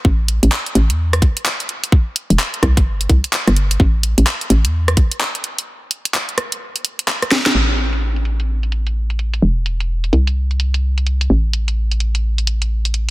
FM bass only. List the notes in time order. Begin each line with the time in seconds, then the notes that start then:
0.05 A1
0.43 A1
0.75 A1
0.90 E2
1.22 A1
2.30 E1
2.63 C2
2.77 G1
3.10 C2
3.47 G1
3.80 A1
4.18 A1
4.50 A1
4.65 E2
4.97 A1
7.55 A1
9.42 E1
10.13 C2
11.30 A1